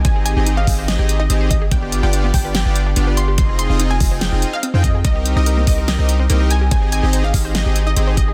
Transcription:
<<
  \new Staff \with { instrumentName = "Synth pluck" } { \time 4/4 \key aes \lydian \tempo 4 = 144 aes''8 aes''8. f''8. ees''8. ees''8. ees''8 | g''8. g''8. g''8 g''8. r8. c'''8 | c'''8 c'''8. aes''8. g''8. f''8. ees''8 | ees''8. ees''8. ees''8 ees''8. r8. aes''8 |
aes''8 aes''8. f''8. ees''8. ees''8. ees''8 | }
  \new Staff \with { instrumentName = "Supersaw synth" } { \time 4/4 \key aes \lydian <c' ees' g' aes' ees''>8. <c' ees' g' aes' ees''>8 r16 <c' ees' g' aes' ees''>8. <c' ees' g' aes' ees''>16 r8 <c' ees' g' aes' ees''>8 r8 | <b d' f' g' d''>8. <b d' f' g' d''>8 r16 <b d' f' g' d''>8. <b d' f' g' d''>16 r8 <b d' f' g' d''>8 r8 | <c' ees' f' aes' ees''>8. <c' ees' f' aes' ees''>8 r16 <c' ees' f' aes' ees''>8. <c' ees' f' aes' ees''>16 r8. <c' ees' f' aes' g''>16 r8 | <c' ees' g' bes' ees''>8. <c' ees' g' bes' ees''>8 r16 <ees' g' bes' ees''>8. <c' ees' g' bes' ees''>16 r8 <c' ees' g' bes' ees''>8 r8 |
<c' ees' g' aes' ees''>8. <c' ees' g' aes' ees''>8 r16 c'8. <c' ees' g' aes' ees''>16 r8 <c' ees' g' aes' ees''>8 r8 | }
  \new Staff \with { instrumentName = "Synth arpeggio sound" } { \time 4/4 \key aes \lydian c''16 aes'16 r16 g'16 ees'16 c'16 r16 c''16 aes'16 g'16 r16 ees'16 c'16 c''16 r16 aes'16 | b'16 g'16 r16 f'16 d'16 b16 r16 b'16 g'16 f'16 r16 d'16 b16 b'16 r16 g'16 | c''16 aes'16 r16 f'16 ees'16 c'16 r16 c''16 aes'16 f'16 r16 ees'16 c'16 c''16 r16 aes'16 | bes'16 g'16 r16 ees'16 bes'16 bes16 r16 bes'16 g'16 ees'16 r16 c'16 bes16 bes'16 r16 g'16 |
c''16 aes'16 r16 g'16 c''16 c'16 r16 c''16 aes'16 g'16 r16 ees'16 c'16 c''16 r16 aes'16 | }
  \new Staff \with { instrumentName = "808-style bass" } { \clef bass \time 4/4 \key aes \lydian aes,,8. aes,,8. aes,,8. aes,,8. aes,,4 | g,,8. g,,8. g,,8. g,,8. g,,4 | f,,8. f,,8. f,,8. f,,16 r8. f,8. | c,8. c,8. c,8. c,8. c,4 |
aes,,8. aes,,8. aes,,8. aes,,8. aes,,4 | }
  \new DrumStaff \with { instrumentName = "Drums" } \drummode { \time 4/4 <hh bd>8 hh8 hh8 <hho bd>8 <hh sn>8 hh8 hh8 <hh bd>8 | <hh bd>8 hh8 hh8 <hho bd>8 <hh sn>8 hh8 hh8 hh8 | <hh bd>8 hh8 hh8 <hho bd>8 <hh sn>8 hh8 hh8 <hh bd>8 | <hh bd>8 hh8 hh8 <hho bd>8 <hh sn>8 hh8 hh8 hh8 |
<hh bd>8 hh8 hh8 <hho bd>8 <hh sn>8 hh8 hh8 <hh bd>8 | }
>>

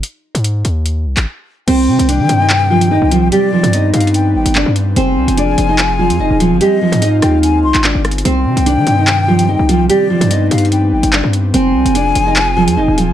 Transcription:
<<
  \new Staff \with { instrumentName = "Flute" } { \time 4/4 \key c \minor \tempo 4 = 146 r1 | g''1 | d''4. f''8 g''8 g''8 r4 | aes''1 |
ees''4. g''8 aes''8 c'''8 r4 | g''1 | d''4. f''8 g''8 g''8 r4 | aes''1 | }
  \new Staff \with { instrumentName = "Nylon-string guitar" } { \time 4/4 \key c \minor r1 | <c' c''>4 <d' d''>8. <ees' ees''>16 r8 <f f'>8 <ees' ees''>8 <f f'>8 | <g g'>8 <f f'>8 <ees' ees''>2 <d' d''>8 r8 | <c' c''>4 <d' d''>8. <ees' ees''>16 r8 <f f'>8 <ees' ees''>8 <f f'>8 |
<g g'>8 <f f'>8 <ees' ees''>2 <d' d''>8 r8 | <c' c''>4 <d' d''>8. <ees' ees''>16 r8 <f f'>8 <ees' ees''>8 <f f'>8 | <g g'>8 <f f'>8 <ees' ees''>2 <d' d''>8 r8 | <c' c''>4 <d' d''>8. <ees' ees''>16 r8 <f f'>8 <ees' ees''>8 <f f'>8 | }
  \new Staff \with { instrumentName = "Analog synth pad" } { \time 4/4 \key c \minor << { r1 | <c ees c'>1 | b1 | <f f' aes'>1 |
f'1 | <c ees c'>1 | b1 | <f f' aes'>1 | } \\ { r1 | g1~ | g1 | c'1 |
aes1 | g1~ | g1 | c'1 | } >> }
  \new Staff \with { instrumentName = "808-style bass" } { \clef bass \time 4/4 \key c \minor r8. aes,8. ees,4 c,16 aes,,16 r4 | c,8 c16 c,8 ees16 g,4.~ g,16 c,8 b,,16 | r8. g,8. g,4 aes,,16 g,,8 g,8. | f,,8 c,16 f,,8. f,,4~ f,,16 f,16 f,,16 ees,,8 g,,16 |
r8. aes,8. ees,4 c,16 aes,,8 g,,8. | c,8 c16 c,8 ees16 g,4.~ g,16 c,8 b,,16 | r8. g,8. g,4 aes,,16 g,,8 g,8. | f,,8 c,16 f,,8. f,,4~ f,,16 f,16 f,,16 ees,,8 g,,16 | }
  \new DrumStaff \with { instrumentName = "Drums" } \drummode { \time 4/4 hh8. hh16 hh8 hh8 hh8. <hc hh>16 r4 | <cymc hh>8. hh16 hh8 hh8 <hc hh>8. hh16 r8 hh8 | hh8. hh16 \tuplet 3/2 { hh16 r16 r16 hh16 hh16 hh16 } hh8. hh16 hc8 hh8 | hh8. hh16 hh8 hh8 <hc hh>8. hh16 r8 hh8 |
hh8. hh16 hh8 <hh ss>8 hh8. <hc hh>16 \tuplet 3/2 { hc16 r16 r16 <hh ss>16 hh16 hh16 } | hh8. hh16 hh8 hh8 <hc hh>8. hh16 r8 hh8 | hh8. hh16 \tuplet 3/2 { hh16 r16 r16 hh16 hh16 hh16 } hh8. hh16 hc8 hh8 | hh8. hh16 hh8 hh8 <hc hh>8. hh16 r8 hh8 | }
>>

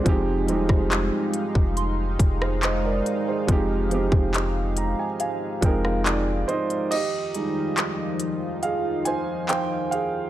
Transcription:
<<
  \new Staff \with { instrumentName = "Synth bell" } { \time 4/4 \key f \minor \tempo 4 = 70 r2 c'''2 | r2 f''2 | r1 | }
  \new Staff \with { instrumentName = "Grand piano" } { \time 4/4 \key f \minor << { <aes' c''>16 r2 r8 <aes' c''>16 <c'' ees''>16 <bes' d''>8 <aes' c''>16~ | <aes' c''>16 r4 r16 bes''16 aes''16 aes''8 g''16 f''16 d''8 <ees' c'' ees''>8 | <g' ees''>4. r8 <aes' f''>8 <c'' aes''>8 <c'' g''>8 <aes' f''>8 | } \\ { <f aes c' ees' g'>8 <f g aes c' ees' g'>4. r2 | <f aes c' ees' g'>8 <f aes c' ees' g'>4. r8 <f aes c' ees' bes'>4 r8 | r8 <g aes ees'>4. r2 | } >> }
  \new Staff \with { instrumentName = "Analog synth pad" } { \time 4/4 \key f \minor <aes ees' f''>1~ | <aes ees' f''>1 | <ees f ees' f'>1 | }
  \new Staff \with { instrumentName = "808-style bass" } { \clef bass \time 4/4 \key f \minor f,,8 ees,,16 f,,8 r8 f,,8. f,,4 r8 | f,,8. f,,4 r8. f,,4 r8 | r1 | }
  \new DrumStaff \with { instrumentName = "Drums" } \drummode { \time 4/4 <hh bd>8 hh16 <bd ss>16 <hc hh>8 hh16 bd16 hh8 <hh bd>16 ss16 <hc hh>8 hh8 | <hh bd>8 hh16 bd16 <hc hh>8 hh8 hh8 <hh bd>16 ss16 <hc hh>8 hh16 hh16 | <cymc hh>8 hh8 <hc hh>8 hh8 hh8 hh8 <hc hh>8 hh8 | }
>>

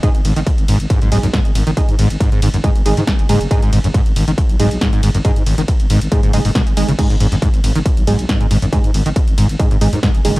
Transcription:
<<
  \new Staff \with { instrumentName = "Synth stab" } { \time 4/4 \key gis \minor \tempo 4 = 138 <gis dis' gis'>8 r2 <gis dis' gis'>8 r4 | <gis dis' gis'>8 r4. <gis dis' gis'>8 <gis dis' gis'>8 r8 <gis dis' gis'>8 | <gis dis' gis'>8 r2 <gis dis' gis'>8 r4 | <gis dis' gis'>8 r4. <gis dis' gis'>8 <gis dis' gis'>8 r8 <gis dis' gis'>8 |
<gis dis' gis'>8 r2 <gis dis' gis'>8 r4 | <gis dis' gis'>8 r4. <gis dis' gis'>8 <gis dis' gis'>8 r8 <gis dis' gis'>8 | }
  \new Staff \with { instrumentName = "Acid bass" } { \clef bass \time 4/4 \key gis \minor gis,16 r16 gis,,16 dis16 gis,,16 r16 gis,16 r16 gis,16 gis,16 gis,16 fis,16 gis,16 r16 gis,,16 dis16 | gis,,16 r16 gis,16 r16 gis,16 gis,16 gis,16 fis,16 gis,16 r16 gis,,16 dis16 gis,,16 r16 gis,16 r16 | gis,16 gis,16 gis,16 fis,16 gis,16 r16 gis,,16 dis16 gis,,16 r16 gis,16 r16 gis,16 gis,16 gis,16 fis,16 | gis,16 r16 gis,,16 dis16 gis,,16 r16 gis,16 r16 gis,16 gis,16 gis,16 gis,16 b,16 r16 gis16 cis16 |
gis,16 gis,16 gis,16 fis,16 gis,16 r16 gis,,16 dis16 gis,,16 r16 gis,16 r16 gis,16 gis,16 gis,16 fis,16 | gis,16 r16 gis,,16 dis16 gis,,16 r16 gis,16 r16 gis,16 gis,16 gis,16 fis,16 gis,16 r16 gis,,16 dis16 | }
  \new Staff \with { instrumentName = "FM bass" } { \clef bass \time 4/4 \key gis \minor r16 gis,,16 gis,,16 gis,,16 r16 gis,,16 gis,,16 gis,,16 r16 b,,16 b,,16 b,,16 r16 gis,,16 gis,,16 gis,,16 | r16 gis,16 gis,,16 gis,,16 r16 gis,,16 gis,,16 gis,,16 r16 gis,,16 gis,,16 gis,16 r16 fis,,16 fis,,16 fis,,16 | r16 gis,,16 gis,,16 gis,,16 r16 gis,,16 gis,,16 gis,,16 r16 b,,16 b,,16 b,,16 r16 gis,,16 gis,,16 gis,,16 | r16 gis,16 gis,,16 gis,,16 r16 gis,,16 gis,,16 gis,,16 r16 fis,,16 fis,,16 fis,,16 r16 gis,,16 gis,,16 gis,,16 |
r16 gis,,16 gis,,16 gis,,16 r16 gis,,16 gis,,16 gis,,16 r16 b,,16 b,,16 b,,16 r16 gis,,16 gis,,16 gis,,16 | r16 gis,16 gis,,16 gis,,16 r16 gis,,16 gis,,16 gis,,16 r16 gis,,16 gis,,16 gis,16 r16 fis,,16 fis,,16 fis,,16 | }
  \new DrumStaff \with { instrumentName = "Drums" } \drummode { \time 4/4 <hh bd cymr>16 hh16 <hho cymr>16 hh16 <hh bd cymr>16 hh16 <hho cymr>16 hh16 <hh bd cymr>16 hh16 <hho cymr>16 hh16 <hh bd cymr sn>16 hh16 <hho cymr>16 hh16 | <hh bd cymr>16 hh16 <hho cymr>16 hh16 <hh bd cymr>16 hh16 <hho cymr>16 hh16 <hh bd cymr>16 hh16 <hho cymr>16 hh16 <hh bd cymr sn>16 hh16 <hho cymr>16 hh16 | <hh bd cymr>16 hh16 <hho cymr>16 hh16 <hh bd cymr>16 hh16 <hho cymr>16 hh16 <hh bd cymr>16 hh16 <hho cymr>16 hh16 <hh bd cymr sn>16 hh16 <hho cymr>16 hh16 | <hh bd cymr>16 hh16 <hho cymr>16 hh16 <hh bd cymr>16 hh16 <hho cymr>16 hh16 <hh bd cymr>16 hh16 <hho cymr>16 hho16 <hh bd cymr sn>16 hh16 <hho cymr>16 hh16 |
<cymc hh bd cymr>16 hh16 <hho cymr>16 hh16 <hh bd cymr>16 hh16 <hho cymr>16 hh16 <hh bd cymr>16 hh16 <hho cymr>16 hh16 <hh bd cymr sn>16 hh16 <hho cymr>16 hh16 | <hh bd cymr>16 hh16 <hho cymr>16 hh16 <hh bd cymr>16 hh16 <hho cymr>16 hh16 <hh bd cymr>16 hh16 <hho cymr>16 hh16 <hh bd cymr sn>16 hh16 <hho cymr>16 hh16 | }
>>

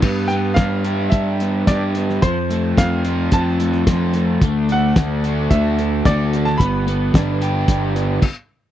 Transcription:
<<
  \new Staff \with { instrumentName = "Tonewheel organ" } { \time 4/4 \key g \mixolydian \tempo 4 = 110 << { r1 | r1 | d'''1~ | d'''2. r4 | } \\ { r1 | r1 | <a' fis''>1 | <b' g''>2. r4 | } >> }
  \new Staff \with { instrumentName = "Upright piano" } { \time 4/4 \key g \mixolydian r8 g''8 f''4 e''4 d''4 | c''4 f''4 a''4. r8 | r8 fis''4. e''4 d''8. a''16 | b''2. r4 | }
  \new Staff \with { instrumentName = "Overdriven electric guitar" } { \time 4/4 \key g \mixolydian b8 b8 d'8 g'8 d'8 b8 g'8 b8 | f8 a8 c'8 f'8 c'8 a8 f'8 a8 | a8 a8 d'8 fis'8 d'8 a8 fis'8 a8 | b8 b8 d'8 g'8 d'8 b8 r4 | }
  \new Staff \with { instrumentName = "Picked electric bass" } { \clef bass \time 4/4 \key g \mixolydian g,4 g,4 g,4 g,4 | f,4 f,4 f,4 f,4 | d,4 d,4 d,4 d,4 | g,,4 g,,4 g,,4 r4 | }
  \new DrumStaff \with { instrumentName = "Drums" } \drummode { \time 4/4 <cymc bd>8 hh8 <hh bd sn>8 hh8 <hh bd>8 hh8 <hh bd sn>8 hh16 sn16 | <hh bd>8 hh8 <hh bd sn>8 hh8 <hh bd>8 hh16 sn16 <hh bd sn>8 hh8 | <hh bd>8 hh8 <hh bd sn>8 hh8 <hh bd>8 hh8 <hh bd sn>8 hh16 sn16 | <hh bd>8 hh8 <hh bd sn>8 hh8 <hh bd>8 hh8 <cymc bd>4 | }
>>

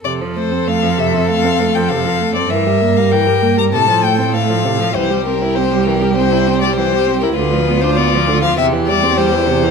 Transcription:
<<
  \new Staff \with { instrumentName = "Violin" } { \time 4/4 \key f \major \tempo 4 = 99 d''8 c''8 f''8 e''8 f''8. g''16 f''8. d''16 | e''8. f''16 g''8. bes''16 a''8 g''8 f''4 | c''8 bes'8 c''8 bes'8 c''8. d''16 c''8. bes'16 | b'8. c''16 d''8. f''16 e''8 d''8 c''4 | }
  \new Staff \with { instrumentName = "Violin" } { \time 4/4 \key f \major a'1 | bes'2 a'2 | g'1 | f'2 g'2 | }
  \new Staff \with { instrumentName = "Viola" } { \clef bass \time 4/4 \key f \major c16 f16 a16 c'16 a16 f16 c16 f16 a16 c'16 a16 f16 c16 f16 a16 c'16 | e16 g16 bes16 g16 e16 g16 bes16 g16 c16 f16 a16 c'16 a16 f16 c16 f16 | e16 g16 c'16 e'16 c'16 g16 e16 g16 c'16 e'16 c'16 g16 e16 g16 c'16 e'16 | d16 f16 b16 d'16 b16 f16 d16 f16 c16 e16 g16 c'16 g16 e16 c16 e16 | }
  \new Staff \with { instrumentName = "Cello" } { \clef bass \time 4/4 \key f \major f,1 | g,2 a,2 | c,1 | d,2 e,2 | }
>>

